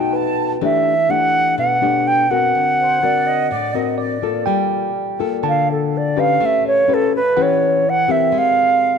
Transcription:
Already playing: nylon-string guitar B2 A3 D#4 F#4, flute section G5
0.13 tine electric piano B4, flute section A5
0.61 nylon-string guitar E3 A3 D4 G4, flute E5
1.09 nylon-string guitar A3 D4 G4, flute F#5
1.58 nylon-string guitar B2, flute F#5
1.81 nylon-string guitar A3 D4 G4
2.07 flute G5
2.30 nylon-string guitar C4 F#4 A#4, flute F#5
2.55 nylon-string guitar D3
2.79 flute section C5
3.02 nylon-string guitar C4 F#4 A#4, flute section D5
3.27 flute section D#5
3.50 nylon-string guitar A2, flute section D5
3.74 nylon-string guitar C4 F#4 A#4, flute section D#5
3.98 tine electric piano D5, flute section D5
4.22 nylon-string guitar A#3 F4 A4
4.46 nylon-string guitar G3, tine electric piano G5
5.19 nylon-string guitar A#3 F4 A4
5.43 nylon-string guitar D3, tine electric piano A5
5.49 flute F5
5.72 flute A4
5.97 flute D5
6.16 nylon-string guitar C#4 G4 B4, flute F5
6.40 nylon-string guitar A3
6.46 flute E5
6.67 flute C#5
6.88 nylon-string guitar C#4 G4 B4
6.94 flute A4
7.16 flute B4
7.37 nylon-string guitar E3 C#4 G4 B4, tine electric piano F#5
7.42 flute C#5
7.90 flute F#5
8.08 nylon-string guitar C4 G4 A#4, flute E5
8.32 nylon-string guitar G#3
8.38 flute F5

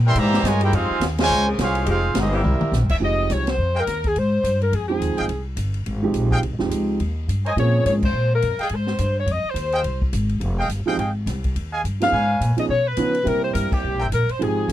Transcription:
Already playing: upright bass A#2
0.05 trombone section E3 G3 C4, trumpet section A#4 E5 G5 C6
0.15 upright bass G#2, trombone section E3 G3 A#3, trumpet section G4 C5 E5 A#5, ride
0.34 snare
0.43 upright bass G2, trombone section G#3, trumpet section C#5 G#5, snare, hi-hat pedal, ride
0.47 trumpet section F4 A#4
0.60 saxophone section F3 G#3 D#4 G4, trombone section A#3 E4 G4, ride
0.64 trumpet section E4 A#4 C5 G5
0.72 upright bass F2, trombone section G#3 C4 F4, trumpet section D#4 G#4 C5 F5, ride
0.90 muted upright bass stroke
1.00 upright bass D#2, snare, hi-hat pedal, ride
1.18 trombone section C#3 F3 G#3, trumpet section F4 C5 C#5 G#5, snare, ride
1.30 upright bass C#2
1.46 saxophone section C#3 A#3 C4 G#4
1.58 upright bass C2, trombone section G#3 C#4 F4, trumpet section C#4 G#4 C5 F5, snare, hi-hat pedal, ride
1.75 ride
1.85 upright bass F1, saxophone section F3 G#3 D#4 G4, trombone section G#3 C4 F4, ride
1.90 trumpet section D#4 G#4 C5 F5
2.14 upright bass G1, trombone section G#3 C4 D#4, snare, hi-hat pedal, ride
2.19 trumpet section C4 G4 G#4 D#5
2.32 saxophone section E3 A#3 C4 G4, trombone section G3 A#3 E4, trumpet section C4 G4 A#4 E5
2.44 upright bass C2, mid tom
2.61 muted upright bass stroke, mid tom
2.72 upright bass A#1, snare, hi-hat pedal
2.81 upright bass G1
2.89 upright bass E1, saxophone section E5, kick, crash
3.00 upright bass F1, grand piano F3 G#3 C4 D#4 G4
3.04 saxophone section D#5
3.30 upright bass C2, saxophone section C#5, snare, hi-hat pedal, ride
3.47 saxophone section C5, snare, ride
3.58 upright bass F2
3.75 trumpet section G#4 D#5 F5 G5
3.79 saxophone section A#4
3.87 upright bass D#2, snare, hi-hat pedal, ride
4.04 saxophone section G#4, kick, ride
4.16 upright bass G#2, saxophone section C5, ride
4.43 upright bass G2, hi-hat pedal, ride
4.61 saxophone section A#4, ride
4.72 upright bass F2, saxophone section G#4, ride
4.88 grand piano F3 G#3 C4 D#4 G5, saxophone section G#4
5.00 upright bass D#2, hi-hat pedal, ride
5.11 upright bass C2
5.17 upright bass G#1, trumpet section G#4 D#5 F5 G5, ride
5.28 upright bass C2, ride
5.56 upright bass G1, hi-hat pedal, ride
5.74 ride
5.86 upright bass G#1, ride
6.03 grand piano F3 G#3 C4 D#4 G4
6.14 upright bass A#1, hi-hat pedal, ride
6.31 trumpet section G#4 D#5 F5 G5, kick
6.42 upright bass C2, ride
6.52 upright bass G#1
6.59 upright bass F1, grand piano F3 G#3 C4 D#4 G4, snare
6.70 upright bass C#2, hi-hat pedal, ride
7.00 upright bass D#2, ride
7.28 upright bass G2, hi-hat pedal, ride
7.45 trumpet section A#4 C5 C#5 G#5, saxophone section D#5, ride
7.56 upright bass A#2, grand piano F3 A#3 C4 C#4 G#4, saxophone section C#5, ride
7.85 upright bass G#2, saxophone section C#5, hi-hat pedal, ride
8.03 saxophone section C5, kick, crash
8.13 upright bass A#2
8.35 saxophone section A#4
8.42 upright bass F2, hi-hat pedal, ride
8.59 trumpet section G#4 D#5 F5 G5, muted upright bass stroke, ride
8.63 saxophone section G#4
8.69 upright bass G#2, ride
8.74 saxophone section C5
8.87 snare
8.98 upright bass G2, hi-hat pedal, ride
9.19 saxophone section C#5
9.26 upright bass F2, ride
9.32 saxophone section D#5
9.44 muted upright bass stroke
9.49 saxophone section C5
9.54 upright bass D#2, hi-hat pedal, ride
9.72 trumpet section G#4 D#5 F5 G5, ride
9.83 upright bass C2, ride
10.02 kick
10.13 upright bass G#1, hi-hat pedal, ride
10.29 ride
10.40 upright bass F1, ride
10.58 trumpet section G#4 D#5 F5 G5
10.68 upright bass G1, hi-hat pedal, ride
10.86 grand piano F3 G#3 C4 D#4 G4, trumpet section G#4 D#5 F5 G5, muted upright bass stroke
10.97 upright bass G#1, trumpet section G#4 D#5 F5 G5, ride
11.26 upright bass C2, snare, hi-hat pedal, ride
11.44 kick, ride
11.55 upright bass D#2, ride
11.73 trumpet section G#4 D#5 F5 G#5
11.84 upright bass G2, hi-hat pedal, ride
12.00 grand piano F3 B3 C#4 D#4 G#4, saxophone section F5, snare, ride
12.12 upright bass G#2, trumpet section B4 C#5 F5 G#5
12.40 upright bass A#2, hi-hat pedal, ride
12.57 grand piano F3 B3 C#4 D#4 G#4, saxophone section D#5, muted upright bass stroke, ride
12.69 upright bass B2, saxophone section C#5
12.87 saxophone section B4
12.97 upright bass C#3, grand piano F3 B3 C#4 D#4 B4, hi-hat pedal, ride
13.15 ride
13.24 upright bass C3, grand piano G3 A#3 C4 E4 G4, saxophone section A#4, ride
13.44 saxophone section C5
13.54 upright bass G2, saxophone section A#4, hi-hat pedal, ride
13.72 saxophone section G4, muted upright bass stroke, kick, crash
13.84 upright bass C2
13.94 upright bass A#1
13.99 trumpet section A#4 C5 E5 G5
14.03 upright bass G1
14.12 upright bass A#1, saxophone section A#4, hi-hat pedal, ride
14.29 saxophone section C5, muted upright bass stroke, ride
14.39 upright bass G#1, grand piano F3 G#3 C4 D#4 G4, saxophone section G#4, ride
14.68 upright bass G1, hi-hat pedal, ride

